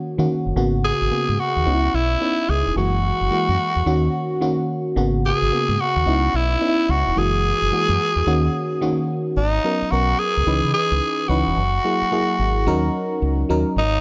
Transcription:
Already playing: fm electric piano D#3 A#3 C#4 F#4
0.18 fm electric piano D#3 A#3 C#4 F#4, fingered electric bass D#3
0.46 fingered electric bass F#1
0.56 fingered electric bass G#1, fm electric piano C#3 A#3 B3 F#4
0.84 tenor saxophone G#4
1.01 fingered electric bass G#1
1.11 fm electric piano C#3 A#3 B3 G#4
1.29 fingered electric bass G#2
1.39 tenor saxophone F#4
1.56 fingered electric bass D#2
1.66 fingered electric bass C#2, fm electric piano B3 C#4 D#4
1.74 fm electric piano E4
1.94 fingered electric bass B1, tenor saxophone E4
2.21 fm electric piano B3 C#4 D#4 E4
2.49 fingered electric bass C#2, tenor saxophone G#4
2.66 fingered electric bass E1
2.76 fingered electric bass F#1, fm electric piano E3 G#3 A#3 F#4, tenor saxophone F#4
3.21 fingered electric bass F#1
3.31 fm electric piano E3 G#3 A#3 F#4
3.49 fingered electric bass F#2
3.76 fingered electric bass E2
3.86 fingered electric bass D#2, fm electric piano D#3 A#3 C#4 F#4
4.41 fm electric piano D#3 A#3 C#4 F#4
4.96 fingered electric bass G#1, fm electric piano C#3 A#3 B3 F#4
5.26 tenor saxophone G#4
5.42 fingered electric bass G#1
5.51 fm electric piano C#3 A#3 B3 F#4
5.69 fingered electric bass G#2
5.80 tenor saxophone F#4
5.96 fingered electric bass D#2
6.06 fingered electric bass C#2, fm electric piano B3 C#4 D#4 E4
6.34 fingered electric bass B1, tenor saxophone E4
6.61 fm electric piano B3 C#4 D#4
6.69 fm electric piano E4
6.89 fingered electric bass C#2, tenor saxophone F#4
7.07 fingered electric bass E1
7.16 fingered electric bass F#1, fm electric piano E3 G#3 A#3 F#4, tenor saxophone G#4
7.62 fingered electric bass F#1
7.71 fm electric piano E3 G#3 A#3 F#4, muted fingered electric bass stroke
7.89 fingered electric bass F#2
8.16 fingered electric bass E2
8.26 fingered electric bass D#2, fm electric piano D#3 A#3 C#4 F#4
8.81 fm electric piano D#3 A#3 C#4 F#4
9.37 fingered electric bass G#1, tenor saxophone D#4
9.64 fm electric piano F#3 B3 C#4 A#4
9.82 muted fingered electric bass stroke
9.91 fingered electric bass B1, fm electric piano F#3 B3 C#4 A#4, tenor saxophone F#4
10.19 tenor saxophone G#4
10.37 fingered electric bass C#2
10.47 fingered electric bass C#2, fm electric piano E3 C#4 D#4 B4
10.64 fingered electric bass C#3
10.74 tenor saxophone G#4
10.92 fingered electric bass C#2
11.28 fingered electric bass C#2, fm electric piano E3 C#4 D#4 B4, tenor saxophone F#4
11.46 fingered electric bass E1
11.56 fingered electric bass F#1
11.84 fm electric piano F#3 A#3 E4 G#4
12.02 muted fingered electric bass stroke
12.12 fm electric piano F#3 A#3 E4 G#4
12.39 fingered electric bass G#1
12.67 fingered electric bass D#2, fm electric piano F#3 C#4 D#4 A#4
13.22 fingered electric bass C#2
13.49 fingered electric bass D#2, fm electric piano F#3 C#4 D#4 A#4
13.76 fingered electric bass G#1, tenor saxophone D#4

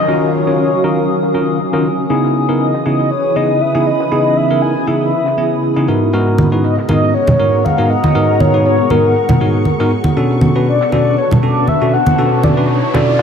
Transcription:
Already playing: string machine D#3 F#3 A#4 C#5 F5, ambient pad C#4 F#4 F5 D#6, soft synth lead D#5, downlifter
0.08 tine electric piano D#3 C#4 F4 F#4 A#4
0.34 soft synth lead C#5
0.47 tine electric piano D#3 C#4 F4 F#4 C#5
0.59 soft synth lead C#5, closed hi-hat
0.84 tine electric piano D#3 C#4 F4 F#4 A#4, soft synth lead A#4
1.09 closed hi-hat
1.23 snare
1.34 tine electric piano D#3 C#4 F4 F#4 A#4
1.60 closed hi-hat
1.73 tine electric piano D#3 C#4 F4 F#4 A#4, snare
1.84 closed hi-hat
2.09 tine electric piano C#3 B3 D#4 E4 G#4, string machine C#3 E3 G#4 B4 D#6, closed hi-hat
2.31 ambient pad E4, open hi-hat
2.49 tine electric piano C#3 B3 D#4 E4 A#4, closed hi-hat
2.60 soft synth lead D#5, closed hi-hat
2.74 snare
2.80 ambient pad B5
2.86 tine electric piano C#3 B3 D#4 E4 G#4, soft synth lead D#5, snare, closed hi-hat
3.11 soft synth lead C#5, closed hi-hat
3.36 tine electric piano C#3 B3 D#4 E4 G#4, soft synth lead D#5
3.61 soft synth lead E5, closed hi-hat
3.75 tine electric piano C#3 B3 D#4 E4 G#4
3.86 soft synth lead D#5, closed hi-hat
4.00 snare
4.12 tine electric piano C#3 B3 D#4 E4 G#4, soft synth lead D#5, closed hi-hat
4.37 soft synth lead E5, closed hi-hat
4.50 tine electric piano C#3 B3 D#4 E4 A#4
4.62 soft synth lead G#5, closed hi-hat
4.87 tine electric piano C#3 B3 D#4 E4 G#4, soft synth lead E5
5.12 closed hi-hat
5.26 snare
5.38 tine electric piano C#3 B3 C#4 E4 G#4, closed hi-hat
5.52 closed hi-hat
5.63 closed hi-hat
5.76 tine electric piano C#3 B3 D#4 E4 G#4, snare
5.88 tine electric piano G#2 B3 D#4 F#4 A#4, string machine G#3 B3 F#4 A#4 D#5, ambient pad B3
6.07 ambient pad G#4
6.13 tine electric piano G#2 B3 D#4 F#4 A#4, closed hi-hat
6.31 ambient pad F#5
6.38 open hi-hat, high conga
6.52 tine electric piano G#2 B3 D#4 F#4 B4
6.59 ambient pad A#5
6.64 soft synth lead D#5, closed hi-hat
6.77 snare
6.89 tine electric piano G#2 B3 D#4 F#4 A#4, soft synth lead D#5, snare, high conga
7.08 soft synth lead D#5
7.14 soft synth lead C#5, closed hi-hat
7.27 high conga, low conga
7.39 tine electric piano G#2 B3 D#4 F#4 A#4
7.65 soft synth lead F5, closed hi-hat, high conga
7.78 tine electric piano G#2 B3 D#4 F#4 A#4
7.90 soft synth lead D#5, string machine C#6, closed hi-hat
8.04 snare, high conga
8.15 tine electric piano G#2 B3 D#4 F#4 A#4
8.40 soft synth lead C#5, high conga
8.54 tine electric piano G#2 B3 D#4 F#4 B4
8.65 soft synth lead C#5, closed hi-hat
8.90 tine electric piano G#2 B3 D#4 F#4 A#4, soft synth lead A#4, high conga
9.16 closed hi-hat
9.29 snare, high conga, low conga
9.40 tine electric piano G#2 B3 D#4 F#4 A#4, closed hi-hat
9.55 closed hi-hat
9.65 closed hi-hat, high conga
9.80 tine electric piano G#2 B3 D#4 F#4 A#4, snare
9.91 string machine B3 F#4 A4 B4, ambient pad D4, closed hi-hat
10.04 ambient pad B4, high conga
10.17 tine electric piano B2 C#4 D4 F#4 A4, closed hi-hat, riser
10.30 closed hi-hat
10.40 ambient pad C#6, open hi-hat, high conga
10.54 tine electric piano B2 C#4 D4 F#4 B4, ambient pad A5, closed hi-hat
10.66 soft synth lead D5, closed hi-hat
10.81 snare
10.92 tine electric piano B2 C#4 D4 F#4 A4, soft synth lead D5, snare, closed hi-hat, high conga
11.06 closed hi-hat
11.18 soft synth lead C#5, closed hi-hat
11.31 closed hi-hat, high conga, low conga
11.43 tine electric piano B2 C#4 D4 F#4 A4, soft synth lead D5, closed hi-hat
11.67 soft synth lead E5, closed hi-hat, high conga
11.81 tine electric piano B2 C#4 D4 F#4 A4
11.93 soft synth lead F#5, closed hi-hat
12.06 closed hi-hat, high conga
12.18 tine electric piano B2 C#4 D4 F#4 A4, closed hi-hat
12.43 soft synth lead D5, closed hi-hat, high conga
12.57 tine electric piano B2 C#4 D4 F#4 B4
12.68 soft synth lead C#5, closed hi-hat
12.94 tine electric piano B2 C#4 D4 F#4 A4, soft synth lead D5, snare, closed hi-hat, high conga

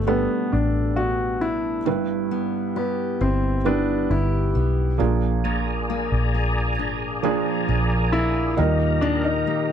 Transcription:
Already playing: fingered electric bass G1, felt piano B2 D3 G3 B3 D4 A4, steel-string acoustic guitar B3 D4 G4
0.07 felt piano G3 B3 D4 A4, steel-string acoustic guitar A3, grand piano B3
0.52 fingered electric bass A1, grand piano D4
0.96 steel-string acoustic guitar B3, grand piano F#4
1.41 steel-string acoustic guitar D4, grand piano E4
1.85 fingered electric bass G1, steel-string acoustic guitar G2, felt piano G2 G3 E4 B4
2.31 steel-string acoustic guitar B3
2.76 grand piano B3, steel-string acoustic guitar G4
3.21 fingered electric bass G1, grand piano C4, steel-string acoustic guitar E4
3.64 felt piano G3 B3 E4 B4, steel-string acoustic guitar G3, grand piano D4
4.10 fingered electric bass G1, grand piano E4, steel-string acoustic guitar G4
4.55 fingered electric bass B1, steel-string acoustic guitar B3
4.98 fingered electric bass A#1, felt piano A#2 F3 A#3 D4 G#4, steel-string acoustic guitar A#2
5.44 steel-string acoustic guitar A#2, tonewheel organ G#4 D5 G#5 A#5
5.90 steel-string acoustic guitar A#3
6.12 fingered electric bass A#1
6.35 steel-string acoustic guitar G#4
6.79 fingered electric bass G#1, steel-string acoustic guitar D4
7.23 felt piano F3 A#3 D4 G#4, steel-string acoustic guitar F3
7.69 fingered electric bass A#1, steel-string acoustic guitar G#4
8.12 steel-string acoustic guitar A#3, grand piano E4
8.57 fingered electric bass D#2, felt piano A#2 G3 A#3 D#4 A#4, steel-string acoustic guitar D#3, grand piano D#4, tonewheel organ G4 A#4 D#5
9.01 steel-string acoustic guitar D#3, grand piano D4
9.24 grand piano D#4
9.47 steel-string acoustic guitar A#3

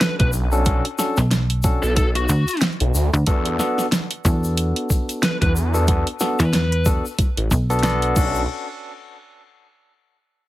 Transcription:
Already playing: tine electric piano C#4 D4 F#4 A4
0.01 lead electric guitar B4, snare, closed hi-hat, shaker
0.20 detuned saw bass B1, lead electric guitar B4, kick, closed hi-hat
0.33 shaker
0.52 tine electric piano C#4 D4 F#4 A4, shaker
0.65 tine electric piano C#4 D4 F#4 A4, kick, closed hi-hat, shaker
0.85 closed hi-hat
0.99 tine electric piano C#4 D4 F#4 A4, snare, shaker
1.17 fm bass B1, snare, shaker
1.31 snare, closed hi-hat, shaker
1.50 closed hi-hat
1.63 tine electric piano C#4 D4 F#4 A4, kick, shaker
1.83 detuned saw bass B1, lead electric guitar A4, shaker
1.96 lead electric guitar A4, kick, closed hi-hat, shaker
2.15 lead electric guitar F#4, closed hi-hat
2.29 fm bass D2, shaker
2.48 closed hi-hat, shaker
2.51 closed hi-hat
2.57 closed hi-hat, shaker
2.62 snare, closed hi-hat
2.68 closed hi-hat
2.73 closed hi-hat
2.80 detuned saw bass B1, closed hi-hat
2.94 detuned saw bass D2, shaker
3.13 fm bass D2, shaker
3.26 detuned saw bass E2, tine electric piano B3 D4 F#4 A4, kick, closed hi-hat, shaker
3.45 closed hi-hat
3.59 tine electric piano B3 D4 F#4 A4, snare, shaker
3.78 snare, shaker
3.92 snare, closed hi-hat, shaker
4.11 closed hi-hat
4.25 fm bass E2, tine electric piano B3 D4 F#4 A4, kick, shaker
4.44 shaker
4.57 closed hi-hat, shaker
4.76 closed hi-hat
4.90 kick, shaker
5.09 closed hi-hat, shaker
5.23 lead electric guitar B4, snare, closed hi-hat, shaker
5.42 detuned saw bass E2, lead electric guitar B4, kick, closed hi-hat
5.56 shaker
5.74 tine electric piano B3 D4 F#4 A4, shaker
5.88 tine electric piano B3 D4 F#4 A4, kick, closed hi-hat, shaker
6.07 closed hi-hat
6.20 tine electric piano B3 D4 F#4 A4, snare, shaker
6.39 fm bass E2, lead electric guitar B4, snare, closed hi-hat, shaker
6.53 snare, closed hi-hat, shaker
6.72 closed hi-hat
6.86 tine electric piano B3 D4 F#4 A4, kick, shaker
7.06 shaker
7.19 kick, closed hi-hat, shaker
7.37 detuned saw bass A1, closed hi-hat
7.51 fm bass B1, kick, shaker
7.70 tine electric piano B3 D4 F#4 A4, closed hi-hat, shaker
7.79 closed hi-hat
7.83 tine electric piano B3 D4 F#4 A4, snare, closed hi-hat, shaker
7.90 closed hi-hat
8.02 closed hi-hat
8.16 detuned saw bass B1, tine electric piano C#4 D4 F#4 A4, kick, crash, shaker
8.35 shaker

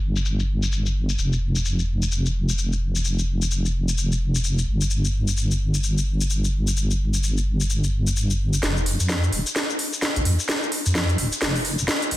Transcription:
Already playing: wobble bass G1
0.16 shaker
0.25 shaker
0.40 shaker
0.63 shaker
0.72 shaker
0.86 shaker
1.09 shaker
1.19 wobble bass F1, shaker
1.33 shaker
1.56 shaker
1.65 shaker
1.79 shaker
2.03 shaker
2.12 shaker
2.26 shaker
2.49 shaker
2.58 shaker
2.73 shaker
2.96 shaker
3.05 shaker
3.19 shaker
3.42 shaker
3.51 shaker
3.66 shaker
3.89 shaker
3.98 shaker
4.12 shaker
4.35 shaker
4.44 shaker
4.58 shaker
4.68 wobble bass G1
4.81 shaker
4.91 shaker
5.05 shaker
5.28 shaker
5.37 shaker
5.51 shaker
5.75 shaker
5.84 shaker
5.98 shaker
6.21 shaker
6.30 shaker
6.45 shaker
6.68 shaker
6.77 shaker
6.91 shaker
7.14 shaker
7.23 shaker
7.38 shaker
7.61 shaker
7.70 shaker
7.84 shaker
8.07 shaker
8.16 shaker
8.30 shaker
8.54 shaker
8.63 wobble bass F1, snare, closed hi-hat, shaker
8.77 shaker
8.86 open hi-hat
9.00 wobble bass F2, closed hi-hat, shaker
9.09 snare, shaker
9.24 shaker
9.33 wobble bass D#1, open hi-hat
9.47 closed hi-hat, shaker
9.56 snare, closed hi-hat, shaker
9.70 shaker
9.79 open hi-hat
9.93 shaker
10.02 snare, shaker
10.16 wobble bass A#1, closed hi-hat, shaker
10.25 wobble bass F2, open hi-hat
10.40 shaker
10.49 snare, closed hi-hat, shaker
10.63 shaker
10.72 open hi-hat
10.86 wobble bass F2, closed hi-hat, shaker
10.95 snare, shaker
11.09 closed hi-hat, shaker
11.18 wobble bass D#1, open hi-hat
11.33 closed hi-hat, shaker
11.42 wobble bass F1, snare, closed hi-hat, shaker
11.56 open hi-hat, shaker
11.65 open hi-hat
11.79 wobble bass F1, shaker
11.88 snare, shaker
12.02 closed hi-hat, shaker
12.11 wobble bass G1, open hi-hat

